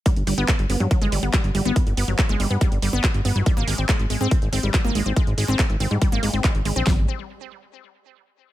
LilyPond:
<<
  \new Staff \with { instrumentName = "Synth arpeggio sound" } { \clef bass \time 4/4 \tempo 4 = 141 g16 r16 g16 b16 r8 b16 fis16 fis16 aes16 g16 b16 g16 r16 g16 b16 | r8 b16 fis16 fis16 aes16 g16 b16 g16 r16 g16 b16 r8 b16 fis16 | g16 bes16 aes16 c'16 aes16 r16 aes16 c'16 r8 c'16 g16 g16 bes16 aes16 c'16 | aes16 r16 aes16 c'16 r8 c'16 g16 g16 bes16 aes16 c'16 aes16 r16 aes16 c'16 |
g8 r2. r8 | }
  \new Staff \with { instrumentName = "Analog synth bass" } { \clef bass \time 4/4 r16 g,,16 g,,16 g,,16 r16 g,,16 g,,16 g,16 r16 g,,16 g,,16 g,,16 r16 g,,16 g,,16 g,,16 | r16 g,,16 g,,16 g,,16 r16 g,,16 g,,16 g,16 r16 g,,16 g,,16 g,,16 r16 g,,16 g,,16 g,,16 | r16 aes,,16 aes,,16 aes,,16 r16 aes,,16 aes,,16 aes,16 r16 aes,,16 aes,,16 aes,,16 r16 aes,,16 aes,,16 aes,,16 | r16 aes,,16 aes,,16 aes,,16 r16 aes,,16 aes,,16 aes,16 r16 aes,,16 aes,,16 aes,,16 r16 aes,,16 aes,,16 bes,,16 |
g,,8 r2. r8 | }
  \new DrumStaff \with { instrumentName = "Drums" } \drummode { \time 4/4 <hh bd>16 hh16 hho16 hh16 <hc hh bd>16 hh16 hho16 hh16 <hh bd>16 hh16 hho16 hh16 <hc hh bd>16 hh16 hho16 hh16 | <hh bd>16 hh16 hho16 hh16 <hc hh bd>16 hh16 hho16 hh16 <hh bd>16 hh16 hho16 hh16 <hc hh bd>16 hh16 hho16 hh16 | <hh bd>16 hh16 hho16 hh16 <hc hh bd>16 hh16 hho16 hh16 <hh bd>16 hh16 hho16 hh16 <hc hh bd>16 hh16 hho8 | <hh bd>16 hh16 hho16 <hc hh>16 <hc hh bd>16 hh16 hho16 hh16 <hh bd>16 hh16 hho16 hh16 <hc hh bd>16 hh16 hho16 hh16 |
<bd sn>4 r4 r4 r4 | }
>>